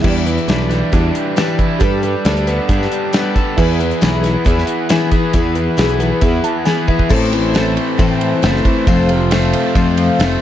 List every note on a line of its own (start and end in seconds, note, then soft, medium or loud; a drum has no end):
0.02 0.38 E2 medium
0.02 1.15 E2 medium
0.02 0.26 E3 medium
0.02 0.27 G3 medium
0.02 1.79 D4 medium
0.02 0.27 D4 medium
0.02 1.76 E4 medium
0.02 1.79 E4 medium
0.02 0.26 E4 medium
0.02 1.79 G4 medium
0.02 1.77 G4 medium
0.02 1.79 B4 medium
0.02 1.78 D5 medium
0.02 kick loud
0.02 crash loud
0.06 0.25 B4 medium
0.26 1.14 E3 medium
0.26 0.48 D4 soft
0.26 0.48 E4 medium
0.26 0.49 B4 medium
0.26 closed hi-hat medium
0.38 closed hi-hat soft
0.48 0.82 B1 medium
0.48 0.71 E3 medium
0.48 0.71 G3 medium
0.48 0.91 D4 medium
0.48 0.71 D4 medium
0.48 0.70 E4 medium
0.48 0.68 B4 medium
0.48 snare loud
0.48 closed hi-hat medium
0.69 1.36 G3 medium
0.69 0.92 D4 medium
0.69 0.93 E4 medium
0.69 0.92 B4 medium
0.69 snare soft
0.69 closed hi-hat medium
0.92 1.10 E2 loud
0.92 1.35 G3 medium
0.92 1.81 D4 medium
0.92 1.36 D4 medium
0.92 1.36 E4 medium
0.92 1.38 B4 medium
0.92 kick loud
0.92 closed hi-hat medium
1.15 1.81 E3 medium
1.15 closed hi-hat medium
1.36 1.59 E3 medium
1.36 1.59 G3 medium
1.36 1.80 G3 medium
1.36 1.59 D4 medium
1.36 1.59 E4 loud
1.36 1.57 B4 loud
1.36 snare loud
1.36 closed hi-hat medium
1.58 1.80 D4 soft
1.58 1.81 E4 medium
1.58 1.81 E4 soft
1.58 1.80 B4 medium
1.58 kick medium
1.58 closed hi-hat medium
1.79 2.14 G2 medium
1.79 2.03 G3 medium
1.79 3.56 D4 medium
1.79 2.03 D4 medium
1.79 3.53 G4 medium
1.79 3.56 G4 medium
1.79 3.54 A4 medium
1.79 3.56 A4 medium
1.79 2.03 A4 loud
1.79 3.56 B4 medium
1.79 2.01 B4 medium
1.79 3.55 B4 medium
1.79 kick loud
1.79 closed hi-hat loud
2.02 2.91 G3 medium
2.02 2.24 D4 soft
2.02 2.25 A4 soft
2.02 2.25 B4 medium
2.02 closed hi-hat medium
2.25 2.58 D2 medium
2.25 2.47 G3 medium
2.25 2.48 D4 medium
2.25 2.69 D4 medium
2.25 2.47 A4 medium
2.25 2.46 B4 medium
2.25 snare loud
2.25 closed hi-hat medium
2.37 closed hi-hat soft
2.47 3.13 B3 medium
2.47 2.69 D4 medium
2.47 2.70 A4 medium
2.47 2.69 B4 medium
2.47 closed hi-hat medium
2.69 2.86 G2 medium
2.69 3.11 G3 medium
2.69 3.58 D4 medium
2.69 3.12 D4 medium
2.69 3.13 A4 medium
2.69 3.14 B4 medium
2.69 kick loud
2.69 closed hi-hat medium
2.82 snare soft
2.92 3.58 G3 medium
2.92 closed hi-hat medium
3.13 3.35 G3 medium
3.13 4.24 B3 medium
3.13 3.36 D4 medium
3.13 3.36 A4 medium
3.13 3.35 B4 loud
3.13 snare loud
3.13 closed hi-hat loud
3.35 3.58 D4 soft
3.35 3.58 A4 medium
3.35 3.58 B4 medium
3.35 kick medium
3.35 closed hi-hat medium
3.56 4.68 E2 medium
3.56 3.91 E2 medium
3.56 3.80 E3 medium
3.56 7.07 B3 medium
3.56 3.80 B3 medium
3.56 7.06 E4 medium
3.56 7.07 E4 medium
3.56 3.80 E4 medium
3.56 7.07 G#4 medium
3.56 3.80 G#4 loud
3.56 7.07 B4 medium
3.56 7.08 B4 medium
3.56 3.78 B4 loud
3.56 kick loud
3.56 crash medium
3.80 4.67 E3 medium
3.80 4.01 E4 medium
3.80 4.01 G#4 medium
3.80 4.02 B4 medium
3.80 closed hi-hat medium
3.91 closed hi-hat soft
4.01 4.35 B1 loud
4.01 4.24 E3 medium
4.01 4.24 B3 medium
4.01 4.24 E4 medium
4.01 4.46 E4 medium
4.01 4.23 G#4 medium
4.01 4.22 B4 loud
4.01 snare loud
4.01 closed hi-hat medium
4.23 4.88 B3 medium
4.23 4.44 E4 soft
4.23 4.45 G#4 medium
4.23 4.46 B4 medium
4.23 snare soft
4.23 closed hi-hat medium
4.44 4.63 E2 medium
4.44 4.89 B3 medium
4.44 4.90 E4 medium
4.44 5.56 E4 medium
4.44 4.90 G#4 medium
4.44 4.90 B4 medium
4.44 kick loud
4.44 closed hi-hat medium
4.58 snare soft
4.67 5.54 E3 medium
4.67 closed hi-hat medium
4.89 5.12 E3 loud
4.89 5.99 B3 medium
4.89 5.12 B3 medium
4.89 5.12 E4 loud
4.89 5.11 G#4 loud
4.89 5.10 B4 loud
4.89 snare loud
4.89 closed hi-hat loud
5.11 5.33 E4 soft
5.11 6.22 G#4 medium
5.11 5.34 G#4 medium
5.11 5.34 B4 medium
5.11 kick medium
5.11 closed hi-hat medium
5.33 6.44 E2 medium
5.33 5.67 E2 loud
5.33 5.56 E3 medium
5.33 5.56 B3 medium
5.33 5.56 E4 loud
5.33 5.56 G#4 medium
5.33 5.54 B4 medium
5.33 kick loud
5.33 closed hi-hat loud
5.55 6.43 E3 medium
5.55 5.77 E4 medium
5.55 5.77 G#4 soft
5.55 5.78 B4 medium
5.55 closed hi-hat medium
5.77 6.11 B1 loud
5.77 6.00 E3 medium
5.77 6.00 B3 medium
5.77 6.20 E4 medium
5.77 6.00 E4 medium
5.77 6.00 G#4 medium
5.77 5.98 B4 medium
5.77 snare loud
5.77 closed hi-hat loud
5.89 closed hi-hat soft
5.99 6.64 B3 medium
5.99 6.21 E4 soft
5.99 6.22 G#4 medium
5.99 6.22 B4 medium
5.99 closed hi-hat medium
6.21 6.39 E2 medium
6.21 6.65 B3 medium
6.21 7.10 E4 medium
6.21 6.65 E4 medium
6.21 6.66 G#4 medium
6.21 6.66 B4 medium
6.21 kick loud
6.21 closed hi-hat medium
6.44 7.10 E3 medium
6.44 6.65 A5 medium
6.44 closed hi-hat medium
6.65 6.88 E3 medium
6.65 7.10 B3 medium
6.65 6.88 B3 loud
6.65 6.88 E4 loud
6.65 6.88 G#4 medium
6.65 6.86 B4 medium
6.65 6.87 G#5 medium
6.65 snare medium
6.87 7.09 E4 medium
6.87 7.10 G#4 medium
6.87 7.10 B4 medium
6.87 7.09 E5 medium
6.87 kick medium
6.99 kick medium
7.09 7.77 A1 loud
7.09 7.32 A2 medium
7.09 8.21 A2 medium
7.09 7.32 E3 medium
7.09 7.33 A3 medium
7.09 7.32 C4 medium
7.09 8.85 C4 medium
7.09 7.31 E4 loud
7.09 8.86 E4 medium
7.09 8.86 A4 medium
7.09 8.86 C5 medium
7.09 7.30 C5 loud
7.09 kick loud
7.09 crash loud
7.31 7.75 E3 medium
7.31 7.52 A3 soft
7.31 7.53 C4 medium
7.31 7.55 E4 medium
7.31 7.54 C5 medium
7.31 ride medium
7.54 8.42 A3 medium
7.54 7.99 A3 medium
7.54 7.99 C4 medium
7.54 7.98 E4 medium
7.54 8.00 C5 medium
7.54 snare loud
7.54 ride loud
7.76 8.19 E3 medium
7.76 ride medium
7.98 8.43 A2 medium
7.98 8.32 A2 medium
7.98 8.43 E3 medium
7.98 8.41 A3 medium
7.98 9.75 C4 medium
7.98 8.43 C4 medium
7.98 8.43 E4 medium
7.98 8.44 C5 loud
7.98 kick loud
7.98 ride loud
8.20 8.64 E3 medium
8.20 ride medium
8.42 8.60 F#1 loud
8.42 8.65 A3 medium
8.42 8.87 A3 medium
8.42 8.65 C4 medium
8.42 8.65 E4 medium
8.42 8.64 C5 medium
8.42 snare loud
8.42 ride loud
8.55 snare soft
8.65 8.87 E3 medium
8.65 8.86 A3 medium
8.65 8.87 C4 medium
8.65 8.88 E4 medium
8.65 8.87 C5 medium
8.65 kick medium
8.65 ride medium
8.87 9.53 F1 loud
8.87 9.97 F2 medium
8.87 9.09 F3 medium
8.87 9.09 A3 loud
8.87 10.41 C4 medium
8.87 9.10 C4 medium
8.87 10.41 F4 medium
8.87 9.09 F4 medium
8.87 10.41 A4 medium
8.87 10.41 C5 medium
8.87 9.08 C5 loud
8.87 kick loud
8.87 ride loud
9.09 10.19 C3 medium
9.09 9.31 C4 soft
9.09 9.32 F4 medium
9.09 9.31 C5 medium
9.09 ride medium
9.31 9.75 A3 medium
9.31 10.18 A3 medium
9.31 9.76 C4 medium
9.31 9.76 F4 medium
9.31 9.77 C5 medium
9.31 snare loud
9.31 ride loud
9.53 9.96 F3 medium
9.53 ride medium
9.75 10.09 F2 loud
9.75 10.20 F3 medium
9.75 10.17 A3 medium
9.75 10.41 C4 medium
9.75 10.19 C4 medium
9.75 10.20 F4 medium
9.75 10.21 C5 medium
9.75 kick loud
9.75 ride loud
9.97 10.40 F3 medium
9.97 ride medium
10.19 10.36 F1 loud
10.19 10.41 A3 medium
10.19 10.41 C4 medium
10.19 10.41 F4 medium
10.19 10.41 C5 medium
10.19 snare loud
10.19 ride loud